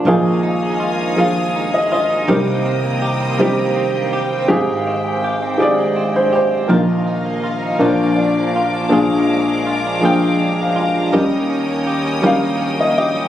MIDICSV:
0, 0, Header, 1, 5, 480
1, 0, Start_track
1, 0, Tempo, 738007
1, 38, Time_signature, 6, 3, 24, 8
1, 8637, End_track
2, 0, Start_track
2, 0, Title_t, "String section"
2, 0, Program_c, 0, 48
2, 51, Note_on_c, 0, 77, 53
2, 51, Note_on_c, 0, 80, 60
2, 51, Note_on_c, 0, 87, 71
2, 54, Note_on_c, 0, 70, 65
2, 1475, Note_off_c, 0, 87, 0
2, 1477, Note_off_c, 0, 80, 0
2, 1478, Note_off_c, 0, 77, 0
2, 1479, Note_off_c, 0, 70, 0
2, 1482, Note_on_c, 0, 87, 64
2, 1486, Note_on_c, 0, 79, 56
2, 1487, Note_on_c, 0, 82, 57
2, 1488, Note_on_c, 0, 72, 64
2, 2906, Note_off_c, 0, 87, 0
2, 2908, Note_off_c, 0, 82, 0
2, 4327, Note_off_c, 0, 79, 0
2, 4328, Note_off_c, 0, 72, 0
2, 4350, Note_on_c, 0, 75, 58
2, 4350, Note_on_c, 0, 77, 63
2, 4352, Note_on_c, 0, 70, 67
2, 5067, Note_off_c, 0, 75, 0
2, 5069, Note_on_c, 0, 86, 79
2, 5073, Note_on_c, 0, 74, 62
2, 5782, Note_off_c, 0, 77, 0
2, 5786, Note_off_c, 0, 70, 0
2, 5790, Note_on_c, 0, 77, 60
2, 5792, Note_off_c, 0, 74, 0
2, 5792, Note_on_c, 0, 68, 66
2, 5794, Note_on_c, 0, 82, 57
2, 7218, Note_off_c, 0, 86, 0
2, 7223, Note_off_c, 0, 77, 0
2, 7224, Note_off_c, 0, 68, 0
2, 7234, Note_on_c, 0, 79, 61
2, 7242, Note_on_c, 0, 73, 65
2, 7242, Note_on_c, 0, 87, 70
2, 8637, Note_off_c, 0, 73, 0
2, 8637, Note_off_c, 0, 79, 0
2, 8637, Note_off_c, 0, 82, 0
2, 8637, Note_off_c, 0, 87, 0
2, 8637, End_track
3, 0, Start_track
3, 0, Title_t, "Upright piano"
3, 0, Program_c, 1, 0
3, 0, Control_c, 1, 64, 127
3, 42, Note_on_c, 1, 53, 75
3, 46, Note_on_c, 1, 34, 63
3, 47, Control_c, 1, 64, 0
3, 50, Note_on_c, 1, 46, 67
3, 50, Note_on_c, 1, 58, 68
3, 52, Note_on_c, 1, 63, 73
3, 55, Note_on_c, 1, 68, 86
3, 176, Control_c, 1, 64, 127
3, 515, Note_off_c, 1, 53, 0
3, 519, Note_off_c, 1, 58, 0
3, 520, Note_off_c, 1, 63, 0
3, 521, Note_off_c, 1, 68, 0
3, 752, Note_on_c, 1, 53, 58
3, 755, Note_on_c, 1, 58, 50
3, 760, Note_on_c, 1, 63, 48
3, 761, Note_on_c, 1, 68, 65
3, 776, Note_on_c, 1, 77, 86
3, 1133, Note_on_c, 1, 75, 78
3, 1142, Note_off_c, 1, 77, 0
3, 1230, Note_off_c, 1, 53, 0
3, 1232, Note_off_c, 1, 58, 0
3, 1234, Note_off_c, 1, 63, 0
3, 1234, Note_off_c, 1, 68, 0
3, 1242, Note_off_c, 1, 75, 0
3, 1252, Note_on_c, 1, 75, 81
3, 1463, Note_off_c, 1, 34, 0
3, 1465, Note_off_c, 1, 46, 0
3, 1483, Note_on_c, 1, 72, 76
3, 1484, Note_on_c, 1, 60, 61
3, 1485, Note_on_c, 1, 55, 63
3, 1488, Note_on_c, 1, 48, 55
3, 1489, Note_on_c, 1, 36, 56
3, 1492, Note_on_c, 1, 63, 62
3, 1494, Control_c, 1, 64, 0
3, 1494, Note_on_c, 1, 70, 80
3, 1496, Note_off_c, 1, 75, 0
3, 1603, Control_c, 1, 64, 127
3, 1955, Note_off_c, 1, 60, 0
3, 1956, Note_off_c, 1, 55, 0
3, 1959, Note_off_c, 1, 63, 0
3, 1960, Note_off_c, 1, 70, 0
3, 2201, Note_on_c, 1, 55, 67
3, 2208, Note_on_c, 1, 63, 65
3, 2209, Note_on_c, 1, 60, 71
3, 2218, Note_on_c, 1, 67, 80
3, 2417, Note_off_c, 1, 72, 0
3, 2672, Note_off_c, 1, 55, 0
3, 2675, Note_off_c, 1, 63, 0
3, 2676, Note_off_c, 1, 60, 0
3, 2680, Note_off_c, 1, 67, 0
3, 2897, Note_off_c, 1, 48, 0
3, 2898, Note_off_c, 1, 36, 0
3, 2916, Note_on_c, 1, 67, 92
3, 2919, Note_on_c, 1, 32, 69
3, 2922, Note_on_c, 1, 44, 70
3, 2922, Note_on_c, 1, 60, 72
3, 2926, Note_on_c, 1, 63, 71
3, 2929, Note_on_c, 1, 68, 97
3, 2931, Control_c, 1, 64, 0
3, 3065, Control_c, 1, 64, 127
3, 3386, Note_off_c, 1, 67, 0
3, 3389, Note_off_c, 1, 60, 0
3, 3391, Note_off_c, 1, 63, 0
3, 3393, Note_off_c, 1, 68, 0
3, 3626, Note_on_c, 1, 60, 52
3, 3628, Note_on_c, 1, 67, 62
3, 3632, Note_on_c, 1, 63, 62
3, 3638, Note_on_c, 1, 68, 69
3, 3655, Note_on_c, 1, 74, 94
3, 4007, Note_on_c, 1, 72, 87
3, 4013, Note_off_c, 1, 74, 0
3, 4099, Note_off_c, 1, 60, 0
3, 4100, Note_off_c, 1, 67, 0
3, 4102, Note_off_c, 1, 63, 0
3, 4105, Note_off_c, 1, 68, 0
3, 4112, Note_off_c, 1, 72, 0
3, 4132, Note_on_c, 1, 72, 82
3, 4325, Note_off_c, 1, 32, 0
3, 4327, Note_off_c, 1, 44, 0
3, 4343, Note_on_c, 1, 53, 69
3, 4344, Note_on_c, 1, 58, 62
3, 4346, Note_off_c, 1, 72, 0
3, 4347, Note_on_c, 1, 34, 55
3, 4351, Note_on_c, 1, 46, 56
3, 4353, Note_on_c, 1, 63, 57
3, 4354, Note_on_c, 1, 70, 84
3, 4359, Control_c, 1, 64, 0
3, 4369, Note_off_c, 1, 70, 0
3, 4378, Note_off_c, 1, 63, 0
3, 4379, Note_on_c, 1, 70, 76
3, 4388, Note_on_c, 1, 63, 53
3, 4461, Control_c, 1, 64, 127
3, 4820, Note_off_c, 1, 53, 0
3, 4820, Note_off_c, 1, 58, 0
3, 5046, Note_off_c, 1, 34, 0
3, 5048, Note_off_c, 1, 46, 0
3, 5065, Note_off_c, 1, 70, 0
3, 5065, Note_on_c, 1, 53, 65
3, 5066, Note_on_c, 1, 58, 67
3, 5067, Note_off_c, 1, 63, 0
3, 5067, Note_on_c, 1, 34, 61
3, 5068, Note_on_c, 1, 46, 61
3, 5069, Note_on_c, 1, 62, 69
3, 5075, Note_on_c, 1, 70, 75
3, 5083, Control_c, 1, 64, 0
3, 5206, Control_c, 1, 64, 127
3, 5304, Note_on_c, 1, 74, 64
3, 5535, Note_off_c, 1, 74, 0
3, 5544, Note_off_c, 1, 53, 0
3, 5545, Note_off_c, 1, 58, 0
3, 5546, Note_off_c, 1, 62, 0
3, 5549, Note_off_c, 1, 70, 0
3, 5553, Note_on_c, 1, 77, 56
3, 5770, Note_off_c, 1, 34, 0
3, 5771, Note_off_c, 1, 46, 0
3, 5780, Note_off_c, 1, 77, 0
3, 5784, Note_on_c, 1, 53, 78
3, 5786, Note_on_c, 1, 58, 68
3, 5789, Note_on_c, 1, 34, 63
3, 5789, Note_on_c, 1, 46, 61
3, 5789, Note_on_c, 1, 62, 71
3, 5799, Note_on_c, 1, 68, 85
3, 5808, Control_c, 1, 64, 0
3, 5919, Control_c, 1, 64, 127
3, 6265, Note_off_c, 1, 53, 0
3, 6266, Note_off_c, 1, 58, 0
3, 6268, Note_off_c, 1, 62, 0
3, 6273, Note_off_c, 1, 68, 0
3, 6502, Note_on_c, 1, 53, 59
3, 6511, Note_on_c, 1, 58, 59
3, 6511, Note_on_c, 1, 62, 53
3, 6521, Note_on_c, 1, 68, 65
3, 6537, Note_on_c, 1, 79, 92
3, 6901, Note_off_c, 1, 79, 0
3, 6907, Note_on_c, 1, 77, 71
3, 6983, Note_off_c, 1, 53, 0
3, 6988, Note_off_c, 1, 58, 0
3, 6988, Note_off_c, 1, 62, 0
3, 6993, Note_off_c, 1, 68, 0
3, 7012, Note_off_c, 1, 77, 0
3, 7022, Note_on_c, 1, 77, 72
3, 7211, Note_off_c, 1, 34, 0
3, 7211, Note_off_c, 1, 46, 0
3, 7234, Note_on_c, 1, 55, 63
3, 7236, Note_off_c, 1, 77, 0
3, 7237, Note_on_c, 1, 39, 59
3, 7239, Note_on_c, 1, 61, 64
3, 7241, Note_on_c, 1, 51, 57
3, 7243, Note_on_c, 1, 70, 69
3, 7244, Note_on_c, 1, 63, 63
3, 7251, Control_c, 1, 64, 0
3, 7382, Control_c, 1, 64, 127
3, 7709, Note_off_c, 1, 55, 0
3, 7711, Note_off_c, 1, 61, 0
3, 7713, Note_off_c, 1, 70, 0
3, 7714, Note_off_c, 1, 63, 0
3, 7945, Note_on_c, 1, 55, 64
3, 7955, Note_on_c, 1, 61, 54
3, 7955, Note_on_c, 1, 63, 51
3, 7956, Note_on_c, 1, 70, 72
3, 7974, Note_on_c, 1, 77, 91
3, 8328, Note_on_c, 1, 75, 77
3, 8336, Note_off_c, 1, 77, 0
3, 8421, Note_off_c, 1, 55, 0
3, 8426, Note_off_c, 1, 61, 0
3, 8426, Note_off_c, 1, 63, 0
3, 8427, Note_off_c, 1, 70, 0
3, 8431, Note_off_c, 1, 75, 0
3, 8441, Note_on_c, 1, 75, 70
3, 8637, Note_off_c, 1, 39, 0
3, 8637, Note_off_c, 1, 51, 0
3, 8637, Note_off_c, 1, 75, 0
3, 8637, End_track
4, 0, Start_track
4, 0, Title_t, "Clean electric guitar"
4, 0, Program_c, 2, 27
4, 0, Note_on_c, 2, 62, 49
4, 41, Note_on_c, 2, 51, 73
4, 46, Note_on_c, 2, 65, 47
4, 85, Note_off_c, 2, 62, 0
4, 164, Note_on_c, 2, 56, 55
4, 281, Note_on_c, 2, 63, 50
4, 399, Note_off_c, 2, 56, 0
4, 407, Note_on_c, 2, 56, 65
4, 512, Note_off_c, 2, 65, 0
4, 520, Note_on_c, 2, 65, 56
4, 646, Note_off_c, 2, 63, 0
4, 649, Note_on_c, 2, 63, 54
4, 760, Note_off_c, 2, 51, 0
4, 762, Note_off_c, 2, 65, 0
4, 768, Note_on_c, 2, 51, 76
4, 771, Note_on_c, 2, 65, 53
4, 879, Note_off_c, 2, 56, 0
4, 887, Note_on_c, 2, 56, 59
4, 1011, Note_off_c, 2, 63, 0
4, 1013, Note_on_c, 2, 63, 56
4, 1115, Note_off_c, 2, 56, 0
4, 1123, Note_on_c, 2, 56, 60
4, 1239, Note_off_c, 2, 65, 0
4, 1247, Note_on_c, 2, 65, 65
4, 1361, Note_off_c, 2, 63, 0
4, 1364, Note_on_c, 2, 63, 55
4, 1474, Note_off_c, 2, 51, 0
4, 1482, Note_off_c, 2, 65, 0
4, 1482, Note_on_c, 2, 51, 77
4, 1484, Note_on_c, 2, 67, 62
4, 1533, Note_off_c, 2, 56, 0
4, 1603, Note_on_c, 2, 58, 55
4, 1724, Note_off_c, 2, 63, 0
4, 1726, Note_on_c, 2, 60, 55
4, 1839, Note_off_c, 2, 58, 0
4, 1847, Note_on_c, 2, 58, 62
4, 1961, Note_off_c, 2, 67, 0
4, 1964, Note_on_c, 2, 67, 58
4, 2081, Note_off_c, 2, 60, 0
4, 2084, Note_on_c, 2, 60, 55
4, 2203, Note_off_c, 2, 51, 0
4, 2214, Note_on_c, 2, 51, 77
4, 2215, Note_off_c, 2, 67, 0
4, 2218, Note_on_c, 2, 67, 64
4, 2325, Note_off_c, 2, 58, 0
4, 2333, Note_on_c, 2, 58, 60
4, 2440, Note_off_c, 2, 60, 0
4, 2448, Note_on_c, 2, 60, 59
4, 2566, Note_off_c, 2, 58, 0
4, 2574, Note_on_c, 2, 58, 64
4, 2678, Note_off_c, 2, 67, 0
4, 2686, Note_on_c, 2, 67, 63
4, 2804, Note_off_c, 2, 60, 0
4, 2811, Note_on_c, 2, 60, 55
4, 2913, Note_off_c, 2, 51, 0
4, 2921, Note_on_c, 2, 51, 80
4, 2923, Note_off_c, 2, 67, 0
4, 2974, Note_off_c, 2, 58, 0
4, 2974, Note_off_c, 2, 60, 0
4, 3049, Note_on_c, 2, 56, 53
4, 3171, Note_on_c, 2, 60, 53
4, 3283, Note_off_c, 2, 56, 0
4, 3410, Note_on_c, 2, 67, 54
4, 3519, Note_off_c, 2, 60, 0
4, 3526, Note_on_c, 2, 60, 55
4, 3635, Note_off_c, 2, 51, 0
4, 3642, Note_off_c, 2, 67, 0
4, 3645, Note_on_c, 2, 51, 80
4, 3762, Note_on_c, 2, 56, 62
4, 3870, Note_off_c, 2, 60, 0
4, 3878, Note_on_c, 2, 60, 59
4, 3985, Note_off_c, 2, 56, 0
4, 3993, Note_on_c, 2, 56, 63
4, 4115, Note_on_c, 2, 67, 65
4, 4227, Note_off_c, 2, 60, 0
4, 4235, Note_on_c, 2, 60, 56
4, 4343, Note_off_c, 2, 51, 0
4, 4350, Note_on_c, 2, 51, 75
4, 4353, Note_off_c, 2, 67, 0
4, 4357, Note_on_c, 2, 65, 66
4, 4400, Note_off_c, 2, 56, 0
4, 4402, Note_off_c, 2, 60, 0
4, 4474, Note_on_c, 2, 58, 52
4, 4595, Note_on_c, 2, 63, 50
4, 4715, Note_off_c, 2, 58, 0
4, 4718, Note_on_c, 2, 58, 66
4, 4834, Note_off_c, 2, 65, 0
4, 4836, Note_on_c, 2, 65, 54
4, 4951, Note_off_c, 2, 63, 0
4, 4959, Note_on_c, 2, 63, 53
4, 5074, Note_off_c, 2, 51, 0
4, 5081, Note_on_c, 2, 53, 77
4, 5083, Note_off_c, 2, 65, 0
4, 5086, Note_on_c, 2, 65, 63
4, 5126, Note_off_c, 2, 63, 0
4, 5199, Note_off_c, 2, 58, 0
4, 5201, Note_on_c, 2, 58, 53
4, 5327, Note_on_c, 2, 62, 56
4, 5446, Note_off_c, 2, 58, 0
4, 5449, Note_on_c, 2, 58, 60
4, 5559, Note_off_c, 2, 65, 0
4, 5567, Note_on_c, 2, 65, 58
4, 5678, Note_off_c, 2, 62, 0
4, 5686, Note_on_c, 2, 62, 49
4, 5796, Note_off_c, 2, 53, 0
4, 5801, Note_off_c, 2, 65, 0
4, 5804, Note_on_c, 2, 53, 66
4, 5809, Note_on_c, 2, 65, 62
4, 5852, Note_off_c, 2, 62, 0
4, 5929, Note_off_c, 2, 58, 0
4, 5931, Note_on_c, 2, 56, 55
4, 6047, Note_on_c, 2, 62, 47
4, 6161, Note_off_c, 2, 56, 0
4, 6169, Note_on_c, 2, 56, 63
4, 6279, Note_off_c, 2, 65, 0
4, 6287, Note_on_c, 2, 65, 54
4, 6403, Note_off_c, 2, 62, 0
4, 6411, Note_on_c, 2, 62, 50
4, 6522, Note_off_c, 2, 53, 0
4, 6525, Note_off_c, 2, 65, 0
4, 6529, Note_on_c, 2, 53, 76
4, 6534, Note_on_c, 2, 65, 54
4, 6636, Note_off_c, 2, 56, 0
4, 6644, Note_on_c, 2, 56, 59
4, 6760, Note_off_c, 2, 62, 0
4, 6768, Note_on_c, 2, 62, 54
4, 6876, Note_off_c, 2, 56, 0
4, 6884, Note_on_c, 2, 56, 64
4, 6990, Note_off_c, 2, 65, 0
4, 6998, Note_on_c, 2, 65, 58
4, 7115, Note_off_c, 2, 62, 0
4, 7122, Note_on_c, 2, 62, 54
4, 7237, Note_off_c, 2, 53, 0
4, 7240, Note_off_c, 2, 65, 0
4, 7240, Note_on_c, 2, 51, 79
4, 7242, Note_on_c, 2, 67, 63
4, 7291, Note_off_c, 2, 56, 0
4, 7291, Note_off_c, 2, 62, 0
4, 7362, Note_on_c, 2, 58, 56
4, 7478, Note_on_c, 2, 61, 51
4, 7593, Note_off_c, 2, 58, 0
4, 7600, Note_on_c, 2, 58, 60
4, 7717, Note_off_c, 2, 67, 0
4, 7719, Note_on_c, 2, 67, 57
4, 7831, Note_off_c, 2, 61, 0
4, 7839, Note_on_c, 2, 61, 58
4, 7947, Note_off_c, 2, 51, 0
4, 7955, Note_on_c, 2, 51, 77
4, 7957, Note_off_c, 2, 67, 0
4, 7960, Note_on_c, 2, 67, 65
4, 8071, Note_off_c, 2, 58, 0
4, 8079, Note_on_c, 2, 58, 57
4, 8193, Note_off_c, 2, 61, 0
4, 8200, Note_on_c, 2, 61, 54
4, 8311, Note_off_c, 2, 58, 0
4, 8319, Note_on_c, 2, 58, 64
4, 8434, Note_off_c, 2, 67, 0
4, 8442, Note_on_c, 2, 67, 62
4, 8550, Note_off_c, 2, 61, 0
4, 8558, Note_on_c, 2, 61, 59
4, 8637, Note_off_c, 2, 51, 0
4, 8637, Note_off_c, 2, 58, 0
4, 8637, Note_off_c, 2, 61, 0
4, 8637, Note_off_c, 2, 67, 0
4, 8637, End_track
5, 0, Start_track
5, 0, Title_t, "Upright bass"
5, 0, Program_c, 3, 32
5, 33, Note_on_c, 3, 34, 73
5, 1457, Note_off_c, 3, 34, 0
5, 1484, Note_on_c, 3, 36, 79
5, 2895, Note_off_c, 3, 36, 0
5, 2926, Note_on_c, 3, 32, 74
5, 4328, Note_off_c, 3, 32, 0
5, 4355, Note_on_c, 3, 34, 73
5, 5062, Note_off_c, 3, 34, 0
5, 5077, Note_on_c, 3, 34, 69
5, 5787, Note_off_c, 3, 34, 0
5, 5806, Note_on_c, 3, 34, 74
5, 7220, Note_off_c, 3, 34, 0
5, 7247, Note_on_c, 3, 39, 70
5, 8637, Note_off_c, 3, 39, 0
5, 8637, End_track
0, 0, End_of_file